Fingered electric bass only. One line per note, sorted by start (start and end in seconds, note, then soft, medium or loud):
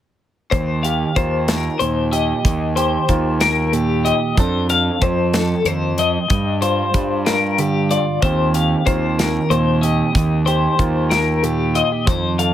0.52 1.03 D#2 loud
1.16 1.67 D#2 medium
1.81 2.32 D#2 medium
2.45 2.96 D#2 medium
3.09 4.11 D#2 medium
4.37 4.88 F2 loud
5.02 5.53 F2 medium
5.65 6.16 F2 medium
6.30 6.81 G2 medium
6.94 7.96 G2 medium
8.22 8.73 D#2 loud
8.87 9.38 D#2 medium
9.49 10.01 D#2 medium
10.15 10.66 D#2 medium
10.79 11.81 D#2 medium
12.07 12.54 F2 loud